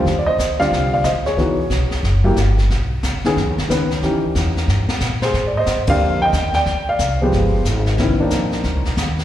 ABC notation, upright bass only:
X:1
M:4/4
L:1/8
Q:"Swing" 1/4=182
K:Eb
V:1 name="Upright bass" clef=bass
E,,2 D,,2 C,,2 D,,2 | _D,,2 _C,, z _G,,,2 =G,,,2 | =B,,,2 ^C,, z (3^F,, ^D,, B,,, C,,2 | E,, z _F,,2 G,,2 B,,2 |
A,,2 G,,2 F,,2 E,,2 | D,,2 C,,2 G,,,2 A,,,2 | C,, z B,,,2 (3D,, C,, B,,, E,,2 |]